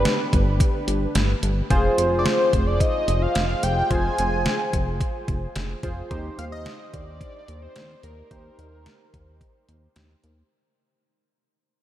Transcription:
Already playing: synth keys D4 G4 B4, analog synth lead B4
0.05 snare, closed hi-hat
0.33 analog synth bass G1, kick, closed hi-hat
0.60 kick, closed hi-hat
0.88 analog synth bass G1, closed hi-hat
1.15 analog synth bass G1, snare, closed hi-hat
1.43 analog synth bass G1, closed hi-hat
1.70 analog synth bass F1, synth keys F4 G#4 C5, kick, closed hi-hat
1.98 analog synth bass F1, closed hi-hat
2.19 analog synth lead D5
2.26 analog synth lead C5, snare, closed hi-hat
2.53 analog synth bass F1, kick, closed hi-hat
2.67 analog synth lead D5
2.80 analog synth lead D#5, kick, closed hi-hat
3.08 analog synth bass F1, closed hi-hat
3.22 analog synth lead F5
3.35 analog synth bass F1, snare, closed hi-hat
3.63 analog synth bass F1, analog synth lead G5, closed hi-hat
3.91 analog synth bass F1, synth keys F4 G#4 C5, analog synth lead G#5, kick, closed hi-hat
4.18 analog synth bass F1, closed hi-hat
4.46 snare, closed hi-hat
4.73 analog synth bass F1, kick, closed hi-hat
5.01 kick, closed hi-hat
5.28 analog synth bass F1, kick, closed hi-hat
5.56 analog synth bass F1, snare, closed hi-hat
5.83 analog synth bass F1, synth keys F4 G#4 C5, kick, closed hi-hat
6.11 analog synth bass D#2, synth keys D#4 G4 C5, kick, closed hi-hat
6.38 analog synth bass D#2, analog synth lead F5, closed hi-hat
6.52 analog synth lead D#5
6.66 snare, closed hi-hat
6.87 analog synth lead D#5
6.93 analog synth bass D#2, analog synth lead D5, kick, closed hi-hat
7.21 kick, closed hi-hat
7.48 analog synth bass D#2, closed hi-hat
7.62 analog synth lead C5
7.76 analog synth bass D#2, snare, closed hi-hat
8.03 analog synth bass D#2, analog synth lead A#4, closed hi-hat
8.31 analog synth bass D#2, synth keys D#4 G4 C5, kick, closed hi-hat
8.59 analog synth bass D#2, closed hi-hat
8.86 snare, closed hi-hat
9.14 analog synth bass D#2, kick, closed hi-hat
9.41 kick, closed hi-hat
9.69 analog synth bass D#2, closed hi-hat
9.96 analog synth bass D#2, snare, closed hi-hat
10.24 analog synth bass D#2, closed hi-hat

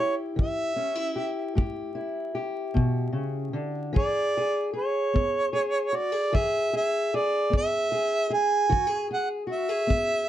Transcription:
Already playing: steel-string acoustic guitar E4
0.00 steel-string acoustic guitar G4, harmonica C#5
0.36 steel-string acoustic guitar E3, harmonica E5, kick
0.76 steel-string acoustic guitar C#4
0.95 steel-string acoustic guitar E4
1.16 steel-string acoustic guitar G4
1.55 steel-string acoustic guitar A2 G4, kick
1.95 steel-string acoustic guitar E4
2.35 steel-string acoustic guitar G4
2.74 steel-string acoustic guitar B2, kick
3.13 steel-string acoustic guitar C#3
3.53 steel-string acoustic guitar D3
3.93 steel-string acoustic guitar E3 G#4, kick
3.97 harmonica D5
4.37 steel-string acoustic guitar G#4
4.73 steel-string acoustic guitar G#4, harmonica C#5
5.13 steel-string acoustic guitar B3, kick
5.53 steel-string acoustic guitar G#4
5.93 steel-string acoustic guitar F#4, harmonica D5
6.12 steel-string acoustic guitar G#4
6.32 steel-string acoustic guitar E3 G#4, harmonica E5, kick
6.73 steel-string acoustic guitar G#4, harmonica E5
7.14 steel-string acoustic guitar G#4, harmonica D5
7.50 steel-string acoustic guitar B3, kick
7.57 harmonica E5
7.92 steel-string acoustic guitar G#4
8.30 steel-string acoustic guitar G#4, harmonica G#5
8.69 steel-string acoustic guitar E3 F#4, kick
8.87 steel-string acoustic guitar G#4
9.11 steel-string acoustic guitar G#4, harmonica F#5
9.47 steel-string acoustic guitar F#4
9.52 harmonica E5
9.69 steel-string acoustic guitar G#4
9.87 steel-string acoustic guitar B3, kick

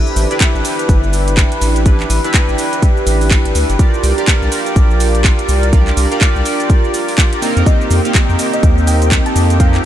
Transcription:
Already playing: analog polysynth D4 E4 G4 B4, analog synth pad D4 E4 G4 B4
0.07 cabasa
0.16 analog synth bass A1, open hi-hat, cabasa
0.30 analog polysynth D4 E4 G4 B4, closed hi-hat, cabasa
0.41 kick, clap, closed hi-hat, cabasa
0.55 analog synth bass A1, cabasa
0.65 open hi-hat, cabasa
0.79 closed hi-hat, cabasa
0.89 analog synth bass G1, kick, closed hi-hat, cabasa
1.04 cabasa
1.13 open hi-hat, cabasa
1.28 closed hi-hat, cabasa
1.37 kick, clap, cabasa
1.52 closed hi-hat, cabasa
1.62 analog synth bass A1, open hi-hat, cabasa
1.76 closed hi-hat, cabasa
1.85 analog polysynth D4 E4 G4 B4, kick, closed hi-hat, cabasa
2.00 clap, cabasa
2.10 analog synth bass A1, open hi-hat, cabasa
2.24 analog polysynth D4 E4 G4 B4, closed hi-hat, cabasa
2.34 kick, clap, closed hi-hat, cabasa
2.49 analog synth bass A1, cabasa
2.58 open hi-hat, cabasa
2.73 closed hi-hat, cabasa
2.82 kick, closed hi-hat, cabasa
2.97 cabasa
3.07 analog synth bass A1, open hi-hat, cabasa
3.21 open hi-hat, cabasa
3.31 kick, clap, cabasa
3.45 analog synth bass A1, closed hi-hat, cabasa
3.55 analog synth bass D2, open hi-hat, cabasa
3.70 analog synth bass G1, closed hi-hat, cabasa
3.79 analog synth pad D4 F4 A#4, analog polysynth F4 G4 A#4 D5, kick, closed hi-hat, cabasa
3.94 cabasa
4.03 analog synth bass C2, open hi-hat, cabasa
4.17 analog polysynth F4 G4 A#4 D5, closed hi-hat, cabasa
4.28 kick, clap, closed hi-hat, cabasa
4.42 analog synth bass C2, cabasa
4.52 open hi-hat, cabasa
4.66 closed hi-hat, cabasa
4.76 analog synth bass A#1, kick, closed hi-hat, cabasa
4.91 cabasa
5.00 open hi-hat, cabasa
5.15 closed hi-hat, cabasa
5.24 kick, clap, cabasa
5.39 closed hi-hat, cabasa
5.49 analog synth bass C2, open hi-hat, cabasa
5.63 closed hi-hat, cabasa
5.73 analog polysynth F4 G4 A#4 D5, kick, closed hi-hat, cabasa
5.87 clap, cabasa
5.97 analog synth bass C2, open hi-hat, cabasa
6.11 analog polysynth F4 G4 A#4 D5, closed hi-hat, cabasa
6.21 kick, clap, closed hi-hat, cabasa
6.36 analog synth bass C2, cabasa
6.45 open hi-hat, cabasa
6.60 closed hi-hat, cabasa
6.70 kick, closed hi-hat, cabasa
6.84 cabasa
6.94 open hi-hat, cabasa
7.08 open hi-hat, cabasa
7.18 kick, clap, cabasa
7.33 closed hi-hat, cabasa
7.42 analog polysynth A#3 C4 D#4 A#4, analog synth pad C4 D#4, open hi-hat, cabasa
7.57 analog synth bass F2, closed hi-hat, cabasa
7.66 analog polysynth A#3 C4 D#4 G4, synth pluck D#5, string machine G5, kick, closed hi-hat, cabasa
7.81 cabasa
7.91 analog synth bass F2, open hi-hat, cabasa
8.05 analog polysynth A#3 C4 D#4 G4, closed hi-hat, cabasa
8.15 kick, clap, closed hi-hat, cabasa
8.29 analog synth bass F2, cabasa
8.39 open hi-hat, cabasa
8.53 synth pluck D#5, closed hi-hat, cabasa
8.63 analog synth bass D#2, kick, closed hi-hat, cabasa
8.78 cabasa
8.87 synth pluck G5, open hi-hat, cabasa
9.02 closed hi-hat, cabasa
9.12 kick, clap, cabasa
9.26 synth pluck A5, closed hi-hat, cabasa
9.36 analog synth bass F2, analog synth pad F4, open hi-hat, cabasa
9.50 closed hi-hat, cabasa
9.60 analog polysynth A#3 C4 D#4 G4, synth pluck F5, kick, closed hi-hat, cabasa
9.74 clap, cabasa

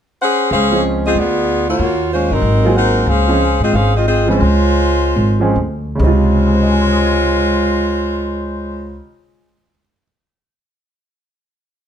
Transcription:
0.21 saxophone section C#4 G#4 C5 F#5
0.51 upright bass C#2, saxophone section C#4 G#4 C5 F5
0.71 grand piano F3 G#3 C4 C#4 G#4
1.06 saxophone section C4 F4 G#4 D#5
1.15 upright bass D2, saxophone section B3 F4 G#4 D5
1.69 saxophone section A#3 F4 F#4 C#5
1.79 upright bass D#2
2.13 saxophone section G#3 C#4 F4 C5
2.30 upright bass G1, saxophone section F#3 C4 D#4 A#4
2.42 upright bass G#1
2.64 grand piano F#3 A#3 C4 F4 G#4
2.76 saxophone section D#4 A#4 C5 F#5
3.06 upright bass C#2, saxophone section C#4 G#4 C5 F5
3.28 grand piano F3 G#3 C4 C#4 G#4
3.60 upright bass G#2, saxophone section C4 F4 G#4 D#5
3.73 upright bass G#1, saxophone section C#4 G#4 C5 F5
3.96 saxophone section C4 F4 G#4 D#5
4.08 saxophone section C4 F4 G#4 D#5
4.27 grand piano F3 G#3 C4 C#4 G#4, saxophone section G#3 C5
4.31 saxophone section F4 C#5
4.41 upright bass C#2
5.16 upright bass G#1
5.40 grand piano F3 G#3 C4 C#4 G#4
5.56 upright bass D2
5.95 grand piano C#3 G#3
5.99 upright bass C#2, grand piano C3, saxophone section G#3 F4 C5 C#5
6.04 grand piano D#4 F4
6.47 grand piano G#4
6.54 grand piano C5
6.63 grand piano D#5
6.72 grand piano G#5
6.82 grand piano C6
6.93 grand piano D#6
7.05 grand piano G#6

